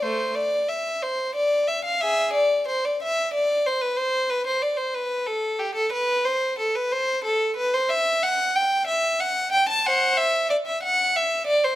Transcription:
\new Staff \with { instrumentName = "Violin" } { \time 12/8 \key c \major \tempo 4. = 61 <a c''>8 d''8 e''8 c''8 d''8 e''16 f''16 <aes' e''>8 d''8 c''16 d''16 e''8 d''8 c''16 b'16 | c''8 b'16 c''16 d''16 c''16 b'8 a'8 g'16 a'16 b'8 c''8 a'16 b'16 c''8 a'8 b'16 c''16 | \key e \minor e''8 fis''8 g''8 e''8 fis''8 g''16 a''16 <c'' fis''>8 e''8 d''16 e''16 fis''8 e''8 d''16 c''16 | }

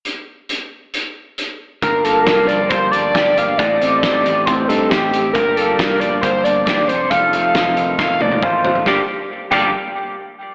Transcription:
<<
  \new Staff \with { instrumentName = "Analog synth lead" } { \time 4/4 \key g \minor \tempo 4 = 136 r1 | bes'8 a'8 bes'8 d''8 c''8 d''8 d''8 f''8 | d''2 c''8 a'8 g'8. r16 | bes'8 a'8 bes'8 d''8 c''8 d''8 d''8 c''8 |
f''2 f''8 d''8 c''8. r16 | g'8 r4 g'8 r2 | }
  \new Staff \with { instrumentName = "Clean electric guitar" } { \time 4/4 \key g \minor r1 | <g d' f' bes'>1 | <a c' g' a' ees''>1 | <g bes f' g' d''>2.~ <g bes f' g' d''>8 <f c' ees' a'>8~ |
<f c' ees' a'>1 | <g bes f' g' d''>8 r4 <g bes f' g' d''>8 r2 | }
  \new Staff \with { instrumentName = "Clean electric guitar" } { \time 4/4 \key g \minor r1 | g,8 bes8 d'8 f8 bes8 d'8 g'8 bes8 | a,8 c'8 ees'8 g8 c'8 ees'8 g'8 c'8 | g,8 bes8 d'8 f8 bes8 d'8 g'8 f,8 |
f,8 a8 ees'8 ees8 a8 ees'8 f'8 a8 | <g, d f bes d' g'>8 r4 <g, d f bes d' g'>8 r2 | }
  \new Staff \with { instrumentName = "Picked electric bass" } { \clef bass \time 4/4 \key g \minor r1 | g,,4 c,8 g,,8 g,,8 g,,8 g,,4 | a,,8 a,,8 a,,8 a,,8 a,,8 g,8 a,,4 | g,,4 c,8 g,,8 g,,8 g,,8 ees,8 f,,8 |
f,,8 f,,8 f,,8 f,,8 f,,8 ees,8 a,,4 | g,,8 r4 g,,8 r2 | }
  \new DrumStaff \with { instrumentName = "Drums" } \drummode { \time 4/4 hh4 hh4 hh4 hh4 | <hh bd>8 hh8 <hh bd sn>8 hh8 <hh bd>8 hh8 <hh bd sn>8 hh8 | <hh bd>8 hh8 <hh bd sn>8 hh8 <hh bd>8 hh8 <hh bd sn>8 hh8 | <hh bd>8 hh8 <hh bd sn>8 hh8 <hh bd>8 hh8 <hh bd sn>8 hh8 |
<hh bd>8 hh8 <hh bd sn>8 hh8 <bd sn>8 tommh16 tommh16 <bd toml>8 tomfh16 tomfh16 | <bd sn>4 r8 <cymc bd>8 r4 r4 | }
>>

